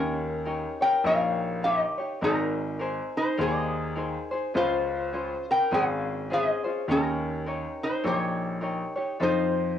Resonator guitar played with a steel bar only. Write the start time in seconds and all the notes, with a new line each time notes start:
Already playing: C#4 A#4
0.82 A#4 G5
1.06 A#4 F5
1.64 G4 D#5
2.24 D#4 A#4
3.17 D#4 C5
3.41 G#4 D#5
4.57 F4 C5
5.51 A#4 G5
5.74 G#4 F5
6.33 G#4 D#5
6.91 C#4 A#4
7.83 D#4 C5
8.07 G4 C#5
9.23 D#4 C5